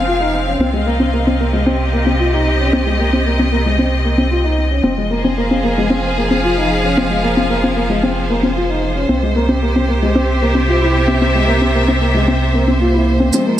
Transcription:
Already playing: F1 F3 C4 G#4 F5
0.07 F4
0.20 D#4
0.47 C#4
0.58 C2 C3 C4
0.72 G#3 D#5
0.86 A#3
1.00 C4
1.13 A#3
1.27 C4
1.40 A#3 G4
1.53 G#3
1.66 C4
1.93 A#3
2.06 C4
2.19 F4
2.34 D#4
2.59 C#4
2.73 C4
2.87 G#3
2.99 A#3
3.13 C4
3.26 A#3
3.39 C4
3.52 A#3
3.66 G#3
3.79 C4
4.05 A#3
4.18 C4
4.31 F4
4.44 D#4
4.71 C#4
4.84 F1 F3 C4
4.98 G#3
5.09 A#3 C5
5.15 G#4
5.24 C4
5.35 A#3 F5
5.51 C4
5.64 A#3
5.78 G#3
5.90 C4
6.17 A#3
6.31 C4
6.44 F4
6.57 D#4
6.84 C#4
6.97 C4
7.10 G#3
7.23 A#3
7.37 C4
7.50 A#3
7.63 C4
7.76 A#3
7.90 G#3
8.03 C4
8.30 A#3
8.43 C4
8.56 F4
8.69 D#4
8.96 C#4
9.09 C2 C3 C4
9.23 G#3
9.36 A#3
9.44 G4
9.49 C4
9.62 A#3
9.76 C4
9.89 A#3
10.02 G#3
10.15 C4
10.24 E5
10.42 A#3
10.55 C4
10.68 F4
10.82 E4
11.08 C4
11.22 C4
11.35 G#3
11.48 A#3
11.62 C4
11.75 A#3
11.88 C4
12.02 A#3
12.14 G#3
12.28 C4
12.53 A#3 C4
12.68 C4
12.79 A#3 F4
12.94 E4
13.20 C4
13.31 F1 F3 G#3 C4, riser, shaker
13.47 A#3 F4

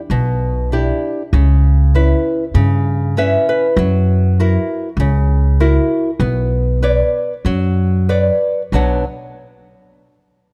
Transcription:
0.10 B1 B2
0.72 D4 E4 G4
1.33 C#2 C#3
1.95 C#4 E4 B4
2.54 G2 C#3
3.17 C#4 E4 B4 E5
3.49 B4
3.77 F#2 F#3
4.40 E4 F#4 A#4
4.97 C#2 C#3
5.60 E4 F#4 A#4
6.20 B1 B3
6.82 B4 C#5 D5
7.45 F#2 F#3
8.09 B4 C#5 D5
8.72 B1 B2 F#3 D4 B4 C#5 F#5

